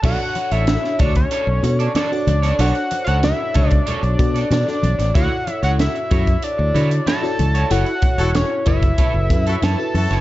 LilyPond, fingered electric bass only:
\new Staff \with { instrumentName = "Fingered electric bass" } { \clef bass \time 4/4 \key b \minor \tempo 4 = 94 b,,16 r8 a,,8 r16 d,8 r16 b,,16 b,8 r8 cis,8 | b,,16 r8 cis,8 r16 cis,8 r16 b,,16 b,8 b,16 r16 b,,16 a,,16 | d,16 r8 cis,8 r16 fis,8 r16 d,16 d8 r8 cis,8 | fis,,16 r8 e,,8 r16 fis,,8 r16 fis,,16 fis,8 fis,16 r16 fis,16 fis,,16 | }